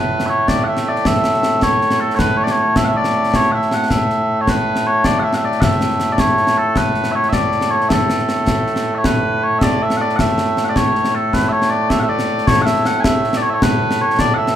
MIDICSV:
0, 0, Header, 1, 3, 480
1, 0, Start_track
1, 0, Key_signature, 3, "major"
1, 0, Tempo, 380952
1, 1317, Time_signature, 6, 3, 24, 8
1, 18342, End_track
2, 0, Start_track
2, 0, Title_t, "Bagpipes"
2, 0, Program_c, 0, 109
2, 0, Note_on_c, 0, 45, 89
2, 0, Note_on_c, 0, 57, 89
2, 0, Note_on_c, 0, 71, 87
2, 330, Note_off_c, 0, 71, 0
2, 330, Note_on_c, 0, 76, 86
2, 371, Note_off_c, 0, 76, 0
2, 371, Note_on_c, 0, 73, 86
2, 606, Note_off_c, 0, 73, 0
2, 606, Note_on_c, 0, 74, 95
2, 802, Note_off_c, 0, 74, 0
2, 802, Note_on_c, 0, 78, 72
2, 860, Note_off_c, 0, 78, 0
2, 860, Note_on_c, 0, 76, 93
2, 1112, Note_off_c, 0, 76, 0
2, 1112, Note_on_c, 0, 74, 97
2, 1341, Note_off_c, 0, 74, 0
2, 1341, Note_on_c, 0, 76, 95
2, 2050, Note_off_c, 0, 76, 0
2, 2050, Note_on_c, 0, 73, 95
2, 2523, Note_off_c, 0, 73, 0
2, 2523, Note_on_c, 0, 69, 94
2, 2705, Note_off_c, 0, 69, 0
2, 2705, Note_on_c, 0, 73, 93
2, 2761, Note_off_c, 0, 73, 0
2, 2761, Note_on_c, 0, 71, 93
2, 2991, Note_off_c, 0, 71, 0
2, 2991, Note_on_c, 0, 73, 92
2, 3069, Note_off_c, 0, 73, 0
2, 3069, Note_on_c, 0, 74, 82
2, 3167, Note_off_c, 0, 74, 0
2, 3167, Note_on_c, 0, 73, 91
2, 3481, Note_off_c, 0, 73, 0
2, 3481, Note_on_c, 0, 76, 105
2, 3589, Note_off_c, 0, 76, 0
2, 3589, Note_on_c, 0, 78, 74
2, 3631, Note_off_c, 0, 78, 0
2, 3631, Note_on_c, 0, 76, 74
2, 3735, Note_off_c, 0, 76, 0
2, 3735, Note_on_c, 0, 74, 106
2, 4231, Note_off_c, 0, 74, 0
2, 4231, Note_on_c, 0, 73, 103
2, 4429, Note_off_c, 0, 73, 0
2, 4429, Note_on_c, 0, 78, 90
2, 4470, Note_off_c, 0, 78, 0
2, 4470, Note_on_c, 0, 76, 90
2, 4712, Note_off_c, 0, 76, 0
2, 4712, Note_on_c, 0, 78, 104
2, 4851, Note_off_c, 0, 78, 0
2, 4851, Note_on_c, 0, 78, 81
2, 4925, Note_off_c, 0, 78, 0
2, 4925, Note_on_c, 0, 76, 102
2, 5558, Note_off_c, 0, 76, 0
2, 5558, Note_on_c, 0, 73, 72
2, 5662, Note_off_c, 0, 73, 0
2, 5662, Note_on_c, 0, 71, 97
2, 6137, Note_off_c, 0, 71, 0
2, 6137, Note_on_c, 0, 73, 94
2, 6363, Note_off_c, 0, 73, 0
2, 6363, Note_on_c, 0, 74, 97
2, 6543, Note_off_c, 0, 74, 0
2, 6543, Note_on_c, 0, 78, 91
2, 6596, Note_off_c, 0, 78, 0
2, 6596, Note_on_c, 0, 76, 91
2, 6733, Note_off_c, 0, 76, 0
2, 6733, Note_on_c, 0, 78, 70
2, 6775, Note_off_c, 0, 78, 0
2, 6775, Note_on_c, 0, 76, 70
2, 6861, Note_off_c, 0, 76, 0
2, 6861, Note_on_c, 0, 74, 95
2, 7062, Note_off_c, 0, 74, 0
2, 7062, Note_on_c, 0, 78, 97
2, 7104, Note_off_c, 0, 78, 0
2, 7104, Note_on_c, 0, 76, 97
2, 7711, Note_off_c, 0, 76, 0
2, 7711, Note_on_c, 0, 74, 70
2, 7809, Note_off_c, 0, 74, 0
2, 7809, Note_on_c, 0, 73, 101
2, 8288, Note_off_c, 0, 73, 0
2, 8288, Note_on_c, 0, 69, 89
2, 8532, Note_off_c, 0, 69, 0
2, 8532, Note_on_c, 0, 71, 93
2, 8967, Note_off_c, 0, 71, 0
2, 8967, Note_on_c, 0, 76, 95
2, 9012, Note_off_c, 0, 76, 0
2, 9012, Note_on_c, 0, 73, 95
2, 9185, Note_off_c, 0, 73, 0
2, 9185, Note_on_c, 0, 76, 97
2, 9234, Note_off_c, 0, 76, 0
2, 9234, Note_on_c, 0, 74, 97
2, 9713, Note_off_c, 0, 74, 0
2, 9713, Note_on_c, 0, 73, 87
2, 9936, Note_off_c, 0, 73, 0
2, 9936, Note_on_c, 0, 76, 75
2, 9986, Note_off_c, 0, 76, 0
2, 9986, Note_on_c, 0, 69, 75
2, 11273, Note_off_c, 0, 69, 0
2, 11273, Note_on_c, 0, 76, 71
2, 11314, Note_off_c, 0, 76, 0
2, 11314, Note_on_c, 0, 73, 71
2, 11402, Note_off_c, 0, 73, 0
2, 11402, Note_on_c, 0, 71, 89
2, 11888, Note_off_c, 0, 71, 0
2, 11888, Note_on_c, 0, 73, 88
2, 12077, Note_off_c, 0, 73, 0
2, 12077, Note_on_c, 0, 76, 96
2, 12132, Note_off_c, 0, 76, 0
2, 12132, Note_on_c, 0, 74, 96
2, 12377, Note_off_c, 0, 74, 0
2, 12377, Note_on_c, 0, 76, 99
2, 12561, Note_off_c, 0, 76, 0
2, 12561, Note_on_c, 0, 78, 95
2, 12613, Note_off_c, 0, 78, 0
2, 12613, Note_on_c, 0, 74, 95
2, 12801, Note_off_c, 0, 74, 0
2, 12801, Note_on_c, 0, 78, 96
2, 12855, Note_off_c, 0, 78, 0
2, 12855, Note_on_c, 0, 76, 96
2, 13416, Note_off_c, 0, 76, 0
2, 13416, Note_on_c, 0, 78, 73
2, 13472, Note_off_c, 0, 78, 0
2, 13472, Note_on_c, 0, 74, 73
2, 13567, Note_off_c, 0, 74, 0
2, 13567, Note_on_c, 0, 73, 92
2, 14046, Note_off_c, 0, 73, 0
2, 14046, Note_on_c, 0, 69, 89
2, 14283, Note_off_c, 0, 69, 0
2, 14283, Note_on_c, 0, 71, 96
2, 14475, Note_off_c, 0, 71, 0
2, 14475, Note_on_c, 0, 76, 89
2, 14516, Note_off_c, 0, 76, 0
2, 14516, Note_on_c, 0, 73, 89
2, 14744, Note_off_c, 0, 73, 0
2, 14744, Note_on_c, 0, 74, 98
2, 14989, Note_off_c, 0, 74, 0
2, 14989, Note_on_c, 0, 76, 105
2, 15117, Note_off_c, 0, 76, 0
2, 15117, Note_on_c, 0, 78, 83
2, 15159, Note_off_c, 0, 78, 0
2, 15159, Note_on_c, 0, 76, 83
2, 15232, Note_off_c, 0, 76, 0
2, 15232, Note_on_c, 0, 74, 101
2, 15716, Note_off_c, 0, 74, 0
2, 15716, Note_on_c, 0, 73, 108
2, 15895, Note_off_c, 0, 73, 0
2, 15895, Note_on_c, 0, 78, 100
2, 15949, Note_off_c, 0, 78, 0
2, 15949, Note_on_c, 0, 76, 100
2, 16203, Note_off_c, 0, 76, 0
2, 16203, Note_on_c, 0, 78, 104
2, 16382, Note_off_c, 0, 78, 0
2, 16382, Note_on_c, 0, 80, 104
2, 16427, Note_off_c, 0, 80, 0
2, 16427, Note_on_c, 0, 76, 104
2, 16842, Note_off_c, 0, 76, 0
2, 16842, Note_on_c, 0, 74, 71
2, 16917, Note_off_c, 0, 74, 0
2, 16917, Note_on_c, 0, 73, 96
2, 17006, Note_off_c, 0, 73, 0
2, 17006, Note_on_c, 0, 76, 80
2, 17058, Note_off_c, 0, 76, 0
2, 17058, Note_on_c, 0, 73, 80
2, 17170, Note_off_c, 0, 73, 0
2, 17170, Note_on_c, 0, 71, 102
2, 17661, Note_off_c, 0, 71, 0
2, 17661, Note_on_c, 0, 73, 98
2, 17888, Note_off_c, 0, 73, 0
2, 17888, Note_on_c, 0, 74, 101
2, 18069, Note_off_c, 0, 74, 0
2, 18069, Note_on_c, 0, 78, 100
2, 18115, Note_off_c, 0, 78, 0
2, 18115, Note_on_c, 0, 76, 100
2, 18342, Note_off_c, 0, 45, 0
2, 18342, Note_off_c, 0, 57, 0
2, 18342, Note_off_c, 0, 76, 0
2, 18342, End_track
3, 0, Start_track
3, 0, Title_t, "Drums"
3, 249, Note_on_c, 9, 38, 68
3, 375, Note_off_c, 9, 38, 0
3, 607, Note_on_c, 9, 35, 55
3, 607, Note_on_c, 9, 38, 96
3, 733, Note_off_c, 9, 35, 0
3, 733, Note_off_c, 9, 38, 0
3, 966, Note_on_c, 9, 38, 76
3, 1092, Note_off_c, 9, 38, 0
3, 1206, Note_on_c, 9, 38, 29
3, 1326, Note_off_c, 9, 38, 0
3, 1326, Note_on_c, 9, 35, 63
3, 1326, Note_on_c, 9, 38, 102
3, 1446, Note_off_c, 9, 38, 0
3, 1446, Note_on_c, 9, 38, 27
3, 1452, Note_off_c, 9, 35, 0
3, 1562, Note_off_c, 9, 38, 0
3, 1562, Note_on_c, 9, 38, 82
3, 1688, Note_off_c, 9, 38, 0
3, 1688, Note_on_c, 9, 38, 27
3, 1805, Note_off_c, 9, 38, 0
3, 1805, Note_on_c, 9, 38, 80
3, 1931, Note_off_c, 9, 38, 0
3, 2044, Note_on_c, 9, 35, 53
3, 2044, Note_on_c, 9, 38, 94
3, 2170, Note_off_c, 9, 35, 0
3, 2170, Note_off_c, 9, 38, 0
3, 2285, Note_on_c, 9, 38, 30
3, 2402, Note_off_c, 9, 38, 0
3, 2402, Note_on_c, 9, 38, 79
3, 2528, Note_off_c, 9, 38, 0
3, 2757, Note_on_c, 9, 35, 60
3, 2757, Note_on_c, 9, 38, 94
3, 2883, Note_off_c, 9, 35, 0
3, 2883, Note_off_c, 9, 38, 0
3, 3116, Note_on_c, 9, 38, 74
3, 3242, Note_off_c, 9, 38, 0
3, 3476, Note_on_c, 9, 35, 53
3, 3476, Note_on_c, 9, 38, 97
3, 3602, Note_off_c, 9, 35, 0
3, 3602, Note_off_c, 9, 38, 0
3, 3835, Note_on_c, 9, 38, 76
3, 3961, Note_off_c, 9, 38, 0
3, 4078, Note_on_c, 9, 38, 29
3, 4203, Note_off_c, 9, 38, 0
3, 4203, Note_on_c, 9, 35, 60
3, 4203, Note_on_c, 9, 38, 92
3, 4325, Note_off_c, 9, 38, 0
3, 4325, Note_on_c, 9, 38, 28
3, 4329, Note_off_c, 9, 35, 0
3, 4451, Note_off_c, 9, 38, 0
3, 4561, Note_on_c, 9, 38, 26
3, 4680, Note_off_c, 9, 38, 0
3, 4680, Note_on_c, 9, 38, 74
3, 4806, Note_off_c, 9, 38, 0
3, 4920, Note_on_c, 9, 35, 54
3, 4920, Note_on_c, 9, 38, 93
3, 5046, Note_off_c, 9, 35, 0
3, 5046, Note_off_c, 9, 38, 0
3, 5164, Note_on_c, 9, 38, 28
3, 5290, Note_off_c, 9, 38, 0
3, 5638, Note_on_c, 9, 35, 57
3, 5638, Note_on_c, 9, 38, 89
3, 5764, Note_off_c, 9, 35, 0
3, 5764, Note_off_c, 9, 38, 0
3, 5993, Note_on_c, 9, 38, 69
3, 6119, Note_off_c, 9, 38, 0
3, 6355, Note_on_c, 9, 35, 54
3, 6355, Note_on_c, 9, 38, 96
3, 6481, Note_off_c, 9, 35, 0
3, 6481, Note_off_c, 9, 38, 0
3, 6712, Note_on_c, 9, 38, 77
3, 6838, Note_off_c, 9, 38, 0
3, 6955, Note_on_c, 9, 38, 30
3, 7077, Note_off_c, 9, 38, 0
3, 7077, Note_on_c, 9, 35, 64
3, 7077, Note_on_c, 9, 38, 98
3, 7202, Note_off_c, 9, 38, 0
3, 7202, Note_on_c, 9, 38, 28
3, 7203, Note_off_c, 9, 35, 0
3, 7320, Note_off_c, 9, 38, 0
3, 7320, Note_on_c, 9, 38, 77
3, 7441, Note_off_c, 9, 38, 0
3, 7441, Note_on_c, 9, 38, 28
3, 7556, Note_off_c, 9, 38, 0
3, 7556, Note_on_c, 9, 38, 78
3, 7682, Note_off_c, 9, 38, 0
3, 7788, Note_on_c, 9, 35, 56
3, 7788, Note_on_c, 9, 38, 96
3, 7914, Note_off_c, 9, 35, 0
3, 7914, Note_off_c, 9, 38, 0
3, 8033, Note_on_c, 9, 38, 28
3, 8154, Note_off_c, 9, 38, 0
3, 8154, Note_on_c, 9, 38, 70
3, 8280, Note_off_c, 9, 38, 0
3, 8513, Note_on_c, 9, 35, 57
3, 8513, Note_on_c, 9, 38, 82
3, 8639, Note_off_c, 9, 35, 0
3, 8639, Note_off_c, 9, 38, 0
3, 8752, Note_on_c, 9, 38, 27
3, 8867, Note_off_c, 9, 38, 0
3, 8867, Note_on_c, 9, 38, 64
3, 8993, Note_off_c, 9, 38, 0
3, 9109, Note_on_c, 9, 38, 26
3, 9230, Note_off_c, 9, 38, 0
3, 9230, Note_on_c, 9, 35, 54
3, 9230, Note_on_c, 9, 38, 86
3, 9356, Note_off_c, 9, 35, 0
3, 9356, Note_off_c, 9, 38, 0
3, 9474, Note_on_c, 9, 38, 29
3, 9592, Note_off_c, 9, 38, 0
3, 9592, Note_on_c, 9, 38, 70
3, 9718, Note_off_c, 9, 38, 0
3, 9839, Note_on_c, 9, 38, 26
3, 9957, Note_off_c, 9, 38, 0
3, 9957, Note_on_c, 9, 35, 63
3, 9957, Note_on_c, 9, 38, 100
3, 10078, Note_off_c, 9, 38, 0
3, 10078, Note_on_c, 9, 38, 27
3, 10083, Note_off_c, 9, 35, 0
3, 10201, Note_off_c, 9, 38, 0
3, 10201, Note_on_c, 9, 38, 81
3, 10320, Note_off_c, 9, 38, 0
3, 10320, Note_on_c, 9, 38, 28
3, 10441, Note_off_c, 9, 38, 0
3, 10441, Note_on_c, 9, 38, 75
3, 10567, Note_off_c, 9, 38, 0
3, 10677, Note_on_c, 9, 35, 55
3, 10677, Note_on_c, 9, 38, 97
3, 10803, Note_off_c, 9, 35, 0
3, 10803, Note_off_c, 9, 38, 0
3, 10921, Note_on_c, 9, 38, 29
3, 11038, Note_off_c, 9, 38, 0
3, 11038, Note_on_c, 9, 38, 74
3, 11164, Note_off_c, 9, 38, 0
3, 11394, Note_on_c, 9, 35, 66
3, 11394, Note_on_c, 9, 38, 104
3, 11520, Note_off_c, 9, 35, 0
3, 11520, Note_off_c, 9, 38, 0
3, 12113, Note_on_c, 9, 35, 53
3, 12113, Note_on_c, 9, 38, 99
3, 12239, Note_off_c, 9, 35, 0
3, 12239, Note_off_c, 9, 38, 0
3, 12478, Note_on_c, 9, 38, 72
3, 12604, Note_off_c, 9, 38, 0
3, 12719, Note_on_c, 9, 38, 27
3, 12839, Note_off_c, 9, 38, 0
3, 12839, Note_on_c, 9, 35, 57
3, 12839, Note_on_c, 9, 38, 95
3, 12965, Note_off_c, 9, 35, 0
3, 12965, Note_off_c, 9, 38, 0
3, 12966, Note_on_c, 9, 38, 26
3, 13078, Note_off_c, 9, 38, 0
3, 13078, Note_on_c, 9, 38, 74
3, 13204, Note_off_c, 9, 38, 0
3, 13321, Note_on_c, 9, 38, 72
3, 13447, Note_off_c, 9, 38, 0
3, 13556, Note_on_c, 9, 35, 51
3, 13556, Note_on_c, 9, 38, 88
3, 13682, Note_off_c, 9, 35, 0
3, 13682, Note_off_c, 9, 38, 0
3, 13802, Note_on_c, 9, 38, 26
3, 13918, Note_off_c, 9, 38, 0
3, 13918, Note_on_c, 9, 38, 66
3, 14044, Note_off_c, 9, 38, 0
3, 14280, Note_on_c, 9, 35, 54
3, 14280, Note_on_c, 9, 38, 88
3, 14406, Note_off_c, 9, 35, 0
3, 14406, Note_off_c, 9, 38, 0
3, 14639, Note_on_c, 9, 38, 69
3, 14765, Note_off_c, 9, 38, 0
3, 14996, Note_on_c, 9, 35, 52
3, 14996, Note_on_c, 9, 38, 93
3, 15122, Note_off_c, 9, 35, 0
3, 15122, Note_off_c, 9, 38, 0
3, 15356, Note_on_c, 9, 38, 75
3, 15482, Note_off_c, 9, 38, 0
3, 15601, Note_on_c, 9, 38, 31
3, 15718, Note_off_c, 9, 38, 0
3, 15718, Note_on_c, 9, 35, 68
3, 15718, Note_on_c, 9, 38, 108
3, 15839, Note_off_c, 9, 38, 0
3, 15839, Note_on_c, 9, 38, 29
3, 15844, Note_off_c, 9, 35, 0
3, 15960, Note_off_c, 9, 38, 0
3, 15960, Note_on_c, 9, 38, 86
3, 16078, Note_off_c, 9, 38, 0
3, 16078, Note_on_c, 9, 38, 31
3, 16196, Note_off_c, 9, 38, 0
3, 16196, Note_on_c, 9, 38, 85
3, 16322, Note_off_c, 9, 38, 0
3, 16435, Note_on_c, 9, 35, 58
3, 16435, Note_on_c, 9, 38, 113
3, 16561, Note_off_c, 9, 35, 0
3, 16561, Note_off_c, 9, 38, 0
3, 16683, Note_on_c, 9, 38, 31
3, 16796, Note_off_c, 9, 38, 0
3, 16796, Note_on_c, 9, 38, 85
3, 16922, Note_off_c, 9, 38, 0
3, 17161, Note_on_c, 9, 35, 67
3, 17161, Note_on_c, 9, 38, 110
3, 17287, Note_off_c, 9, 35, 0
3, 17287, Note_off_c, 9, 38, 0
3, 17522, Note_on_c, 9, 38, 80
3, 17648, Note_off_c, 9, 38, 0
3, 17876, Note_on_c, 9, 35, 66
3, 17876, Note_on_c, 9, 38, 102
3, 18002, Note_off_c, 9, 35, 0
3, 18002, Note_off_c, 9, 38, 0
3, 18238, Note_on_c, 9, 38, 76
3, 18342, Note_off_c, 9, 38, 0
3, 18342, End_track
0, 0, End_of_file